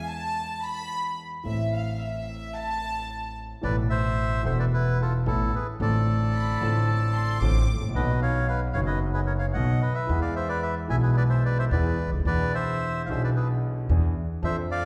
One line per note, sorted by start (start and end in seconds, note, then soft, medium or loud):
0.00 1.34 E2 medium
0.00 1.35 E3 medium
0.00 1.34 G#3 medium
0.00 1.35 B3 medium
0.00 1.36 B4 medium
0.00 0.10 G#5 medium
0.10 0.64 A5 medium
0.64 1.18 B5 medium
1.43 3.52 A1 medium
1.43 3.53 A1 medium
1.43 3.53 A2 medium
1.43 3.52 E3 medium
1.43 3.53 A3 soft
1.43 3.53 C4 soft
1.43 1.71 E5 medium
1.48 3.54 A4 medium
1.75 2.00 F5 medium
2.00 2.54 E5 medium
2.54 3.37 A5 medium
3.61 4.41 A1 medium
3.61 4.41 A1 loud
3.61 4.41 A2 medium
3.61 4.41 B2 medium
3.61 4.40 E3 medium
3.61 4.41 A3 medium
3.61 3.76 B4 medium
3.61 3.76 D5 medium
3.66 4.42 A4 medium
3.90 4.42 C5 medium
3.90 4.44 E5 loud
4.43 5.22 E1 medium
4.43 5.23 E1 loud
4.43 5.22 E2 medium
4.43 5.22 E3 medium
4.43 5.22 A3 medium
4.43 5.23 B3 medium
4.43 5.23 A4 medium
4.43 4.58 C5 medium
4.43 4.58 E5 loud
4.59 4.66 B4 medium
4.59 4.65 D5 loud
4.74 4.99 E4 medium
4.74 5.01 B4 loud
5.01 5.14 F4 medium
5.01 5.13 A4 medium
5.26 5.49 A1 loud
5.26 5.50 A1 medium
5.26 5.50 A2 medium
5.26 5.49 E3 medium
5.26 5.49 A3 medium
5.26 5.50 B3 medium
5.26 5.52 E4 medium
5.26 5.55 A4 medium
5.26 5.50 A4 medium
5.55 5.67 G#4 medium
5.55 5.67 B4 medium
5.79 6.57 A1 loud
5.79 6.57 A1 medium
5.79 6.58 A2 medium
5.79 6.57 D3 medium
5.79 6.57 A3 medium
5.79 6.58 C4 medium
5.79 6.58 F4 medium
5.79 7.38 A4 medium
5.79 7.38 D5 loud
6.34 6.59 B5 medium
6.60 7.37 A1 medium
6.60 7.38 A1 medium
6.60 7.38 A2 medium
6.60 7.37 D3 medium
6.60 7.38 A3 medium
6.60 7.38 C4 medium
6.60 6.87 A5 medium
6.65 7.39 F4 medium
6.88 7.13 A5 medium
7.15 7.41 C6 medium
7.41 7.64 A1 loud
7.41 7.64 A1 medium
7.41 7.64 A2 medium
7.41 7.65 D3 medium
7.41 7.65 A3 medium
7.41 7.65 C4 medium
7.41 7.65 F4 medium
7.41 7.81 D6 loud
7.75 7.82 G#1 medium
7.82 7.88 A1 medium
7.89 7.95 A#1 medium
7.89 7.94 A#1 medium
7.94 8.71 B1 loud
7.94 8.72 B1 loud
7.94 8.71 B2 medium
7.94 8.71 D#3 medium
7.94 8.71 F#3 medium
7.94 8.72 B3 medium
7.94 8.20 B4 medium
7.94 8.20 D#5 medium
7.99 8.73 F#4 medium
8.22 8.47 C#5 medium
8.22 8.46 F5 loud
8.48 8.61 B4 medium
8.48 8.60 F5 medium
8.73 9.51 F#1 medium
8.73 9.52 F#1 medium
8.73 9.52 F#2 medium
8.73 9.51 D#3 medium
8.73 9.51 F#3 medium
8.73 9.52 B3 medium
8.73 8.81 C#5 medium
8.73 8.79 F5 medium
8.78 9.53 F#4 medium
8.86 9.00 B4 medium
8.86 8.99 D#5 medium
9.14 9.21 G#4 medium
9.14 9.20 B4 medium
9.26 9.33 A#4 medium
9.26 9.33 C#5 medium
9.39 9.46 C#5 medium
9.39 9.46 F5 medium
9.53 9.78 B1 loud
9.53 9.79 B1 medium
9.53 9.79 B2 medium
9.53 9.78 D#3 medium
9.53 9.79 F#3 medium
9.53 9.79 B3 medium
9.53 9.79 F#4 medium
9.53 9.80 D#5 medium
9.53 9.82 F#5 medium
9.81 9.93 B4 medium
9.81 9.96 D#5 medium
9.94 10.20 B4 medium
9.94 10.20 E5 medium
10.07 10.86 E2 medium
10.07 10.86 E2 loud
10.07 10.08 E3 medium
10.07 10.86 E3 medium
10.07 10.86 G#3 medium
10.07 10.86 B3 medium
10.11 10.87 G#4 medium
10.21 10.35 D5 medium
10.21 10.34 F5 medium
10.36 10.49 C5 medium
10.36 10.48 E5 medium
10.48 10.61 B4 medium
10.48 10.63 D5 loud
10.62 10.75 B4 medium
10.62 10.75 E5 medium
10.88 11.68 B1 medium
10.88 11.68 B2 medium
10.88 11.67 E3 medium
10.88 11.67 G#3 medium
10.88 11.68 B3 medium
10.88 11.69 G#4 medium
10.88 10.96 E5 medium
10.88 10.96 G#5 loud
11.02 11.16 G#4 medium
11.02 11.16 B4 medium
11.17 11.23 B4 medium
11.17 11.23 D5 loud
11.30 11.43 C5 medium
11.30 11.44 E5 medium
11.45 11.58 B4 medium
11.45 11.58 D5 medium
11.59 11.65 C5 medium
11.59 11.65 E5 loud
11.71 11.95 E2 loud
11.71 11.96 E2 medium
11.71 11.96 E3 medium
11.71 11.96 G#3 medium
11.71 11.96 B3 medium
11.71 11.96 G#4 medium
11.71 12.11 B4 medium
11.71 12.10 D5 medium
12.06 12.12 C#2 soft
12.06 12.14 C#2 medium
12.13 12.19 D2 medium
12.13 12.20 D2 medium
12.19 12.25 D#2 medium
12.19 12.27 D#2 medium
12.25 13.04 E2 loud
12.25 13.06 E2 medium
12.25 13.05 B2 medium
12.25 13.05 E3 medium
12.25 13.06 D4 medium
12.25 12.52 B4 medium
12.25 12.55 D5 loud
12.30 13.07 G#4 medium
12.55 13.02 C5 medium
12.55 13.02 E5 loud
13.06 13.85 B1 medium
13.06 13.86 B2 medium
13.06 13.85 E3 medium
13.06 13.86 B3 medium
13.06 13.09 F5 medium
13.10 13.86 B1 medium
13.10 13.87 D4 medium
13.10 13.88 G#4 medium
13.10 13.22 C5 medium
13.10 13.23 E5 medium
13.24 13.30 B4 medium
13.24 13.30 D5 medium
13.36 13.48 G#4 medium
13.36 13.48 B4 medium
13.89 14.12 E2 loud
13.89 14.13 E2 medium
13.89 14.13 E3 medium
13.89 14.13 B3 medium
13.89 14.13 D4 medium
13.89 14.13 G#4 medium
14.42 14.85 F2 loud
14.42 14.85 F2 medium
14.42 14.85 F3 medium
14.42 14.85 C4 medium
14.42 14.85 D4 medium
14.42 14.85 A4 medium
14.42 14.57 C5 medium
14.42 14.56 E5 loud
14.71 14.85 D5 loud
14.71 14.85 F5 loud